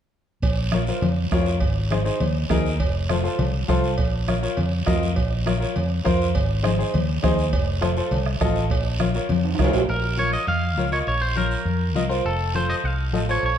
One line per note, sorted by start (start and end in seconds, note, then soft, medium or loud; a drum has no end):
0.42 0.90 A#1 medium
0.42 bombo low medium
0.42 cowbell medium
0.42 long guiro medium
0.72 0.79 F4 medium
0.72 0.79 A#4 medium
0.72 0.79 C#5 medium
0.72 bombo rim medium
0.72 high conga medium
0.72 short guiro medium
0.87 1.04 F4 medium
0.87 1.04 A#4 medium
0.87 1.04 C5 medium
0.87 short guiro medium
1.01 1.26 F2 medium
1.01 cowbell medium
1.01 high conga medium
1.01 low conga medium
1.01 long guiro medium
1.31 1.63 F2 medium
1.31 1.53 F4 medium
1.31 1.53 A#4 medium
1.31 1.53 C#5 loud
1.31 bombo low medium
1.31 bombo rim medium
1.31 high conga medium
1.31 low timbale medium
1.31 short guiro medium
1.46 short guiro medium
1.60 2.09 G#1 medium
1.60 bombo low medium
1.60 cowbell medium
1.60 long guiro medium
1.91 1.96 D#4 medium
1.91 1.96 G#4 medium
1.91 1.97 C5 medium
1.91 bombo rim medium
1.91 high conga medium
1.91 short guiro medium
2.05 2.21 D#4 medium
2.05 2.21 G#4 medium
2.05 2.21 C5 medium
2.05 short guiro medium
2.20 2.44 D#2 medium
2.20 cowbell medium
2.20 high conga medium
2.20 low conga medium
2.20 long guiro medium
2.50 2.81 D#2 medium
2.50 2.71 D#4 medium
2.50 2.71 G#4 medium
2.50 2.71 A#4 medium
2.50 bombo low medium
2.50 bombo rim medium
2.50 high conga medium
2.50 low timbale medium
2.50 short guiro medium
2.66 short guiro medium
2.80 3.27 F1 medium
2.80 bombo low medium
2.80 cowbell loud
2.80 long guiro medium
3.09 3.15 F4 medium
3.09 3.15 A4 medium
3.09 3.15 C5 medium
3.09 bombo rim loud
3.09 high conga medium
3.09 short guiro medium
3.23 3.39 F4 medium
3.23 3.40 A4 medium
3.23 3.40 C5 medium
3.23 short guiro medium
3.39 3.63 C2 medium
3.39 cowbell medium
3.39 high conga medium
3.39 low conga medium
3.39 long guiro medium
3.68 3.98 C2 medium
3.68 3.89 F4 medium
3.68 3.89 A4 medium
3.68 3.90 C5 medium
3.68 bombo low medium
3.68 bombo rim medium
3.68 high conga medium
3.68 short guiro medium
3.84 short guiro medium
3.98 4.46 A#1 medium
3.98 bombo low medium
3.98 cowbell medium
3.98 long guiro medium
4.28 4.33 F4 medium
4.28 4.33 A#4 medium
4.28 4.33 C#5 medium
4.28 bombo rim loud
4.28 high conga medium
4.28 short guiro medium
4.43 4.58 F4 medium
4.43 4.58 A#4 medium
4.43 4.58 C#5 medium
4.43 short guiro medium
4.57 4.81 F2 medium
4.57 cowbell medium
4.57 low conga medium
4.57 long guiro medium
4.86 5.18 F2 medium
4.86 5.07 F4 medium
4.86 5.07 A#4 medium
4.86 5.08 D#5 medium
4.86 bombo low medium
4.86 bombo rim medium
4.86 high conga medium
4.86 low timbale medium
4.86 short guiro medium
5.03 short guiro medium
5.16 5.64 A#1 medium
5.16 bombo low medium
5.16 cowbell medium
5.16 long guiro medium
5.46 5.51 F4 medium
5.46 5.51 A#4 medium
5.46 5.51 C#5 medium
5.46 bombo rim medium
5.46 high conga medium
5.46 short guiro medium
5.60 5.76 F4 medium
5.60 5.76 A#4 medium
5.60 5.76 C#5 medium
5.60 short guiro medium
5.76 5.99 F2 medium
5.76 cowbell medium
5.76 low conga medium
5.76 long guiro medium
6.04 6.37 F2 medium
6.04 6.25 F4 medium
6.04 6.26 A#4 medium
6.04 6.26 C5 loud
6.04 bombo low medium
6.04 bombo rim medium
6.04 high conga medium
6.04 short guiro medium
6.22 short guiro medium
6.35 6.82 G#1 medium
6.35 bombo low medium
6.35 cowbell loud
6.35 long guiro medium
6.63 6.69 D#4 medium
6.63 6.69 G#4 medium
6.63 6.69 C5 medium
6.63 bombo rim medium
6.63 high conga medium
6.63 short guiro medium
6.78 6.94 D#4 medium
6.78 6.94 G#4 medium
6.78 6.94 C5 medium
6.78 short guiro medium
6.94 7.17 D#2 medium
6.94 cowbell medium
6.94 high conga medium
6.94 low conga medium
6.94 long guiro medium
7.23 7.54 D#2 medium
7.23 7.43 D#4 medium
7.23 7.44 G#4 medium
7.23 7.44 C5 medium
7.23 bombo low medium
7.23 bombo rim medium
7.23 high conga medium
7.23 low timbale medium
7.23 short guiro medium
7.38 short guiro medium
7.53 8.00 F1 medium
7.53 bombo low medium
7.53 cowbell loud
7.53 long guiro medium
7.81 7.87 F4 medium
7.81 7.87 A4 medium
7.81 7.87 C5 medium
7.81 bombo rim medium
7.81 high conga medium
7.81 short guiro medium
7.97 8.13 F4 medium
7.97 8.13 A4 medium
7.97 8.13 C5 medium
7.97 short guiro medium
8.11 8.35 C2 medium
8.11 cowbell medium
8.11 low conga medium
8.11 long guiro medium
8.26 bombo rim medium
8.41 8.70 A1 medium
8.41 8.62 F4 medium
8.41 8.62 A4 medium
8.41 8.62 D#5 loud
8.41 bombo low medium
8.41 bombo rim medium
8.41 high conga medium
8.41 low timbale medium
8.41 short guiro medium
8.56 short guiro medium
8.70 9.18 A#1 medium
8.70 bombo low medium
8.70 cowbell loud
8.70 long guiro medium
8.99 9.05 F4 medium
8.99 9.05 A#4 medium
8.99 9.06 C#5 medium
8.99 bombo rim medium
8.99 high conga medium
8.99 short guiro medium
9.14 9.30 F4 medium
9.14 9.31 A#4 medium
9.14 9.31 C#5 medium
9.14 short guiro medium
9.29 9.53 F2 medium
9.29 cowbell medium
9.29 high conga medium
9.29 low conga medium
9.29 long guiro medium
9.45 high timbale medium
9.55 high timbale medium
9.55 short guiro medium
9.59 9.73 C2 medium
9.59 9.80 F4 medium
9.59 9.80 A#4 medium
9.59 9.81 C#5 loud
9.59 bombo low medium
9.59 bombo rim medium
9.59 high conga medium
9.59 low conga medium
9.64 low timbale loud
9.73 9.87 A#1 medium
9.73 low timbale loud
9.73 short guiro medium
9.88 10.36 A#1 medium
9.88 10.17 A#4 medium
9.88 long guiro medium
10.17 10.39 F4 medium
10.17 10.39 A#4 medium
10.17 10.39 C#5 medium
10.17 10.32 C#5 loud
10.17 high conga medium
10.17 short guiro medium
10.33 10.48 D#5 medium
10.33 short guiro medium
10.47 10.77 F2 medium
10.47 10.89 F5 medium
10.47 high conga medium
10.47 long guiro medium
10.77 11.01 C#2 medium
10.77 10.83 F4 medium
10.77 10.83 A#4 medium
10.77 10.83 C#5 medium
10.77 high conga medium
10.77 short guiro medium
10.92 11.08 F4 medium
10.92 11.08 A#4 medium
10.92 10.98 C#5 medium
10.92 11.08 D#5 medium
10.92 short guiro medium
11.07 11.54 A#1 medium
11.07 11.21 C#5 medium
11.07 long guiro medium
11.21 11.35 C5 medium
11.36 11.57 F4 medium
11.36 11.57 A#4 medium
11.36 12.07 A#4 medium
11.36 11.58 C#5 medium
11.36 high conga medium
11.36 short guiro medium
11.51 short guiro medium
11.65 11.96 F2 medium
11.65 high conga medium
11.65 long guiro medium
11.95 12.20 C2 medium
11.95 12.01 F4 medium
11.95 12.01 A#4 medium
11.95 12.01 D#5 medium
11.95 high conga medium
11.95 short guiro medium
12.09 12.25 F4 medium
12.09 12.25 A#4 medium
12.09 12.25 C5 medium
12.09 short guiro medium
12.25 12.72 F1 medium
12.25 12.53 A4 medium
12.25 long guiro medium
12.55 12.75 F4 medium
12.55 12.76 A4 medium
12.55 12.76 C5 medium
12.55 12.71 C5 medium
12.55 high conga medium
12.55 short guiro medium
12.70 12.75 D#5 medium
12.70 short guiro medium
12.84 13.13 C2 loud
12.84 13.30 F5 medium
12.84 long guiro medium
13.13 13.37 A1 medium
13.13 13.19 F4 medium
13.13 13.19 A4 medium
13.13 13.19 D#5 medium
13.13 high conga medium
13.13 short guiro medium
13.29 13.44 F4 medium
13.29 13.44 A4 medium
13.29 13.44 C5 medium
13.29 13.45 C#5 medium
13.29 short guiro medium
13.43 13.58 A#1 medium
13.43 13.58 C#5 medium
13.43 long guiro medium